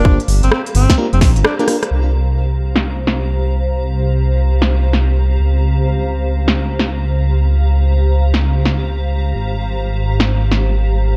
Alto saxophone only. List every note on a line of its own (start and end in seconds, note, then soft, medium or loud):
0.00 0.20 D4 medium
0.43 0.49 C4 medium
0.52 0.61 C4 medium
0.75 0.96 C4 medium
1.13 1.18 C4 medium
1.21 1.31 C4 medium
1.44 1.54 D4 medium
1.59 1.65 D4 medium